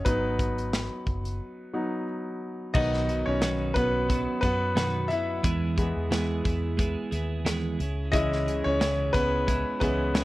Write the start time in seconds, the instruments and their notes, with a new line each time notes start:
0.05 fingered electric bass G#1, grand piano F#3 B3 D#4 B4, kick, closed hi-hat
0.39 kick, closed hi-hat
0.58 closed hi-hat
0.73 snare, closed hi-hat
1.07 fingered electric bass F#1, kick, closed hi-hat
1.25 closed hi-hat
1.74 grand piano F#3 B3 D#4
2.74 fingered electric bass B1, clean electric guitar B2 D#3 F#3 B3 F#4 B4, grand piano D#3 F#3 B3 D#4 D#5, kick, crash
2.94 snare
3.07 clean electric guitar F#3 B3 F#4 B4, closed hi-hat
3.26 fingered electric bass B1, grand piano C#4 C#5
3.41 clean electric guitar B2 D#3 F#3 B3 F#4 B4, snare, closed hi-hat
3.74 fingered electric bass B1, grand piano B3 B4, clean electric guitar B3 F#4 B4, kick, closed hi-hat
3.78 clean electric guitar F#3
4.08 clean electric guitar F#3 B3 F#4 B4, kick, closed hi-hat
4.41 fingered electric bass F#2, grand piano B3 B4, clean electric guitar B3 F#4 B4, kick, closed hi-hat
4.46 clean electric guitar F#3
4.75 clean electric guitar B2 D#3 F#3 B3 F#4 B4, snare, closed hi-hat
5.08 clean electric guitar B3 F#4 B4, grand piano E4 E5, closed hi-hat
5.13 clean electric guitar F#3
5.43 fingered electric bass E2, clean electric guitar E3 G#3 B3 E4 G#4, kick, closed hi-hat
5.76 grand piano E3 G#3 B3, clean electric guitar B3 E4 G#4, kick, closed hi-hat
5.96 fingered electric bass E2
6.11 clean electric guitar E3 G#3 B3 E4 G#4, snare, closed hi-hat
6.44 fingered electric bass E2, clean electric guitar B3 E4 G#4, kick, closed hi-hat
6.77 clean electric guitar G#3 B3 E4 G#4, kick, closed hi-hat
7.11 fingered electric bass D#2, clean electric guitar B3 E4 G#4, closed hi-hat
7.45 clean electric guitar E3 G#3 B3 E4 G#4, snare, closed hi-hat
7.79 fingered electric bass C#2, clean electric guitar C#4 E4 G#4, closed hi-hat
8.12 clean electric guitar C#3 G#3 C#4 E4 G#4, grand piano E3 G#3 C#4 E4 D#5, kick, closed hi-hat
8.32 snare
8.46 clean electric guitar C#4 E4 G#4, closed hi-hat
8.64 fingered electric bass C#2, grand piano C#4 C#5
8.80 clean electric guitar C#3 G#3 C#4 E4 G#4, snare, closed hi-hat
9.13 fingered electric bass C#2, grand piano B3 B4, clean electric guitar C#4 E4 G#4, kick, closed hi-hat
9.47 clean electric guitar G#3 C#4 E4 G#4, kick, closed hi-hat
9.80 fingered electric bass C#2, grand piano E3 G#3 B3 C#4 B4, clean electric guitar E4 G#4, kick, closed hi-hat
9.84 clean electric guitar C#4
10.14 clean electric guitar C#3 G#3 C#4 E4 G#4, snare, closed hi-hat